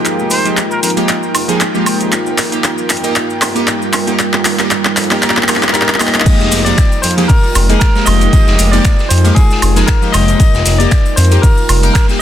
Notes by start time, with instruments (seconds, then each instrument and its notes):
Already playing: analog polysynth F3 G#3 A#3 D#4 G4, ambient pad G#3 D#4 A#4, analog synth pad D#4 F4 A#4 G5
0.05 ambient pad F4, clap, closed hi-hat, maracas
0.19 analog synth bass F1, maracas
0.30 analog synth bass F1, muted trumpet C5, open hi-hat, maracas
0.45 analog polysynth F3 G#3 A#3 D#4 G4, closed hi-hat, maracas
0.57 clap, closed hi-hat, maracas
0.71 muted trumpet A#4, maracas
0.83 analog synth bass F2, muted trumpet A#4, open hi-hat, maracas
0.90 closed hi-hat
0.96 analog polysynth F3 G#3 A#3 D#4 G4, closed hi-hat, maracas
1.08 clap, closed hi-hat, maracas
1.23 maracas
1.35 analog synth bass F1, open hi-hat, high woodblock, maracas
1.48 analog polysynth F3 G#3 A#3 D#4 G#4, closed hi-hat, maracas
1.61 clap, closed hi-hat, maracas
1.74 analog polysynth F3 G#3 A#3 D#4 G4, maracas
1.86 analog synth bass F1, open hi-hat, high woodblock, maracas
2.01 closed hi-hat, maracas
2.12 ambient pad G3, clap, closed hi-hat, maracas
2.26 analog synth bass F1, maracas
2.38 analog synth bass F1, clap, open hi-hat, maracas
2.52 analog polysynth A#3 D#4 G4, closed hi-hat, maracas
2.64 clap, closed hi-hat, maracas
2.78 maracas
2.90 analog synth bass F2, clap, open hi-hat, maracas
2.97 closed hi-hat
3.03 analog polysynth A#3 D#4 G4, closed hi-hat, maracas
3.15 clap, closed hi-hat, maracas
3.30 maracas
3.41 analog synth bass F1, clap, open hi-hat, high woodblock, maracas
3.55 analog polysynth A#3 D#4 G4, closed hi-hat, maracas
3.67 clap, closed hi-hat, maracas
3.82 maracas
3.93 analog synth bass F1, clap, open hi-hat, high woodblock, maracas
4.07 analog polysynth A#3 D#4 G4, closed hi-hat, maracas
4.19 ambient pad F4, clap, closed hi-hat, maracas
4.33 analog synth bass F1, clap, maracas
4.45 analog synth bass F1, clap, open hi-hat, maracas
4.59 analog polysynth A#3 D#4 G4, clap, closed hi-hat, maracas
4.71 clap, closed hi-hat, maracas
4.85 clap, maracas
4.97 analog synth bass F2, clap, open hi-hat, maracas
5.04 closed hi-hat
5.10 analog polysynth A#3 D#4 G4, clap, closed hi-hat, maracas
5.22 analog polysynth A#3 D#4 G4, clap, closed hi-hat, maracas
5.30 clap
5.36 clap, maracas
5.43 clap
5.48 analog synth bass D#1, analog polysynth A#3 D#4 G4, clap, open hi-hat, high woodblock, maracas
5.56 clap
5.63 clap, closed hi-hat, maracas
5.69 clap
5.73 analog polysynth A#3 D#4 G4, tine electric piano A#4, clap, closed hi-hat, maracas
5.81 clap
5.88 clap, maracas
5.94 clap
5.99 analog synth bass F1, analog polysynth A#3 D#4 G4, tine electric piano D#5, clap, open hi-hat, high woodblock, maracas
6.07 clap
6.14 clap, closed hi-hat, maracas
6.20 clap
6.25 analog polysynth F3 G#3 A#3 D#4 G4, ambient pad G#3 D#4 G4 A#4, kick, closed hi-hat, crash, maracas
6.40 analog synth bass F1, snare, maracas
6.52 analog synth bass F1, snare, closed hi-hat, open hi-hat, maracas
6.65 analog polysynth F3 G#3 A#3 D#4 G4, tine electric piano D5, closed hi-hat, maracas
6.78 finger snap, kick, snare, closed hi-hat, maracas
6.92 closed hi-hat, maracas
7.02 analog synth bass F2, tine electric piano C5, closed hi-hat, open hi-hat, maracas
7.11 closed hi-hat
7.17 analog polysynth F3 G#3 A#3 D#4 G4, closed hi-hat, maracas
7.28 tine electric piano A#4, kick, closed hi-hat, open hi-hat, maracas
7.44 maracas
7.55 analog synth bass F1, closed hi-hat, open hi-hat, high woodblock, maracas
7.69 analog polysynth F3 G#3 A#3 D#4 G#4, closed hi-hat, maracas
7.80 tine electric piano A#4, finger snap, kick, snare, closed hi-hat, maracas
7.94 analog polysynth F3 G#3 A#3 D#4 G4, snare, maracas
8.05 analog synth bass F1, tine electric piano D#5, closed hi-hat, open hi-hat, high woodblock, maracas
8.21 closed hi-hat, maracas
8.33 ambient pad F4, kick, closed hi-hat, maracas
8.47 analog synth bass F1, snare, maracas
8.59 analog synth bass F1, closed hi-hat, open hi-hat, maracas
8.71 analog polysynth F3 G#3 A#3 D#4 G4, tine electric piano D5, closed hi-hat, maracas
8.85 finger snap, kick, snare, closed hi-hat, maracas
8.99 snare, maracas
9.09 analog synth bass F2, tine electric piano C5, closed hi-hat, open hi-hat, maracas
9.18 closed hi-hat
9.24 analog polysynth F3 G#3 A#3 D#4 G4, closed hi-hat, maracas
9.35 tine electric piano G#4, kick, closed hi-hat, maracas
9.51 snare, maracas
9.62 analog synth bass F1, closed hi-hat, open hi-hat, high woodblock, maracas
9.76 analog polysynth F3 G#3 A#3 D#4 G#4, snare, closed hi-hat, maracas
9.87 tine electric piano A#4, finger snap, kick, snare, closed hi-hat, maracas
10.02 analog polysynth F3 G#3 A#3 D#4 G4, maracas
10.12 analog synth bass F1, tine electric piano D#5, closed hi-hat, open hi-hat, high woodblock, maracas
10.28 closed hi-hat, maracas
10.40 ambient pad G3, analog synth pad F4, kick, closed hi-hat, maracas
10.54 analog synth bass F1, snare, maracas
10.66 analog synth bass F1, snare, closed hi-hat, open hi-hat, maracas
10.78 analog polysynth A#3 D#4 G4, tine electric piano D5, closed hi-hat, maracas
10.91 finger snap, kick, snare, closed hi-hat, maracas
11.06 closed hi-hat, maracas
11.16 analog synth bass F2, tine electric piano C5, closed hi-hat, open hi-hat, maracas
11.25 closed hi-hat
11.31 analog polysynth A#3 D#4 G4, closed hi-hat, maracas
11.42 tine electric piano A#4, kick, closed hi-hat, open hi-hat, maracas
11.57 maracas
11.69 analog synth bass F1, closed hi-hat, open hi-hat, high woodblock, maracas
11.83 analog polysynth A#3 D#4 A#4, closed hi-hat, maracas
11.94 tine electric piano A#4, finger snap, kick, snare, closed hi-hat, maracas
12.08 analog polysynth A#3 D#4 G4, snare, maracas